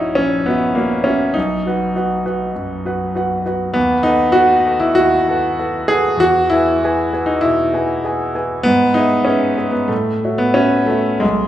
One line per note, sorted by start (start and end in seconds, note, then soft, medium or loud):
0.00 0.18 A#1 medium
0.00 0.15 C#4 medium
0.00 1.34 D#4 medium
0.00 1.39 E4 medium
0.00 0.48 F#4 soft
0.00 0.49 C#5 soft
0.00 0.49 E5 soft
0.15 0.46 A#1 soft
0.15 0.46 C#4 medium
0.46 0.76 B3 medium
0.46 0.74 F#4 soft
0.46 0.75 C#5 soft
0.46 0.75 E5 soft
0.75 1.06 A#3 medium
0.75 1.04 F#4 soft
0.75 1.04 C#5 soft
0.75 1.04 E5 soft
1.04 1.35 C#4 medium
1.04 1.34 F#4 soft
1.04 1.34 C#5 soft
1.04 1.34 E5 medium
1.34 1.65 B1 medium
1.34 3.44 D#4 medium
1.66 1.93 F#4 soft
1.66 1.93 B4 soft
1.66 1.94 F#5 medium
1.96 2.22 F#4 soft
1.96 2.23 B4 soft
1.96 2.23 F#5 medium
2.26 2.52 F#4 soft
2.26 2.52 B4 soft
2.26 2.52 F#5 soft
2.56 2.84 F#2 soft
2.85 3.12 F#4 soft
2.85 3.13 B4 soft
2.85 3.13 F#5 soft
3.15 3.42 F#4 soft
3.15 3.42 B4 soft
3.15 3.43 F#5 medium
3.46 3.72 F#4 soft
3.46 3.72 B4 soft
3.46 3.73 F#5 soft
3.74 4.04 D#2 medium
3.74 4.04 B3 loud
4.03 4.34 D#4 loud
4.03 4.32 A4 soft
4.03 4.33 B4 soft
4.03 4.32 F#5 medium
4.32 4.80 F#4 loud
4.32 4.63 A4 medium
4.32 4.63 B4 soft
4.32 4.63 F#5 medium
4.65 4.93 A4 soft
4.65 4.94 B4 soft
4.65 4.95 F#5 medium
4.80 4.96 E4 loud
4.95 5.27 D#2 medium
4.95 5.89 F#4 loud
5.29 5.56 A4 medium
5.29 5.56 B4 medium
5.29 5.56 F#5 medium
5.59 5.87 A4 soft
5.59 5.87 B4 medium
5.59 5.87 F#5 soft
5.88 6.20 G#4 loud
5.88 6.18 A4 medium
5.88 6.18 B4 soft
5.88 6.18 F#5 medium
6.17 6.49 E2 medium
6.17 6.51 F#4 loud
6.50 7.27 E4 loud
6.50 6.80 G#4 soft
6.50 6.80 B4 medium
6.50 6.80 G#5 medium
6.84 7.11 G#4 medium
6.84 7.11 B4 medium
6.84 7.11 G#5 medium
7.13 7.40 G#4 soft
7.13 7.41 B4 soft
7.13 7.41 G#5 medium
7.26 7.42 D#4 medium
7.41 7.73 B2 medium
7.41 8.65 E4 loud
7.74 8.01 G#4 soft
7.74 8.01 B4 soft
7.74 8.02 G#5 medium
8.05 8.32 G#4 soft
8.05 8.32 B4 soft
8.05 8.33 G#5 medium
8.35 8.63 G#4 soft
8.35 8.63 B4 soft
8.35 8.63 G#5 medium
8.63 8.96 G#2 medium
8.63 8.95 B3 loud
8.94 9.26 D#4 loud
8.94 9.24 G#4 soft
8.94 9.24 B4 soft
8.94 9.25 E5 medium
9.25 9.73 C#4 medium
9.25 9.55 G#4 medium
9.25 9.56 B4 soft
9.25 9.56 E5 medium
9.58 9.87 G#4 soft
9.58 9.87 B4 soft
9.58 9.87 E5 soft
9.72 9.89 B3 medium
9.88 10.21 A2 medium
9.88 10.38 A3 medium
10.24 10.53 F#4 soft
10.24 10.53 C#5 soft
10.24 10.53 E5 soft
10.38 10.55 B3 medium
10.54 10.88 C#4 medium
10.54 10.85 F#4 soft
10.54 10.86 C#5 soft
10.54 10.86 E5 soft
10.86 11.21 A3 medium
10.86 11.19 F#4 soft
10.86 11.19 C#5 soft
10.86 11.19 E5 soft
11.20 11.48 B1 medium
11.20 11.48 G#3 medium